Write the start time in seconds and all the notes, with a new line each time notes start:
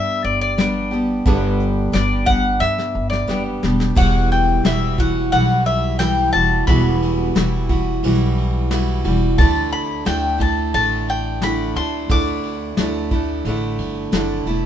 Already playing: G2 G3 B3 D4 G4 E5
0.24 G1 D5, closed hi-hat
0.41 D5
0.58 G3 B3 D4 G4, snare, closed hi-hat
0.91 G3 B3 D4 G4, closed hi-hat
1.26 G1 G2 D3 G3 B3 D4 G4, kick, closed hi-hat
1.60 closed hi-hat
1.92 G1 G3 B3 D4 G4 D5, snare, closed hi-hat
2.25 G3 B3 D4 G4 F#5, kick, closed hi-hat
2.60 G2 E5, snare
2.78 snare
2.95 G1
3.10 D5, snare
3.27 F#1 G3 B3 D4 G4, snare
3.63 E1 G3 B3 D4 G4, snare
3.80 snare
3.95 E1 E2 B2 E3 G3 E4 F#5, kick, crash
4.31 G5, ride
4.64 E1 E3 G3 E4 F#4 E5, snare, ride
4.98 E3 G3 E4 F#4 F#5, kick, ride
5.32 B1 E3 G3 E4 F#4 F#5, ride
5.66 E5, ride
5.99 E3 G3 E4 G5, snare, ride
6.33 E1 G3 E4 F#4 A5, ride
6.37 E3
6.67 E1 E2 B2 E3 G3 E4 F#4 B5, kick, ride
7.02 ride
7.35 E1 E3 G3 E4 F#4, snare, ride
7.69 E3 G3 E4 F#4, kick, ride
8.03 B1 E3 G3 E4, ride
8.07 F#4
8.38 ride
8.71 E3 G3 E4 F#4, snare, ride
9.04 E1 E3 G3 E4 F#4, ride
9.38 D2 D3 A3 D4 E4 A5, kick, ride
9.72 B5, ride
10.05 D2 D3 A3 D4 E4 G5, snare, ride
10.38 A3 D4 E4 A5, kick, ride
10.74 A1 D3 A3 D4 E4 A5, ride
11.08 G5, ride
11.42 D3 A3 D4 E4 B5, snare, ride
11.75 D2 A3 D4 E4 C6, ride
12.09 D2 D3 A3 D4 E4 D6, kick, ride
12.43 ride
12.77 D2 D3 A3 D4, snare, ride
12.81 E4
13.11 A3 D4 E4, kick, ride
13.45 A1 D3 A3 D4, ride
13.49 E4
13.79 G1, ride
14.12 F#1 D3 A3 D4 E4, snare, ride
14.46 E1 A3 D4 E4, ride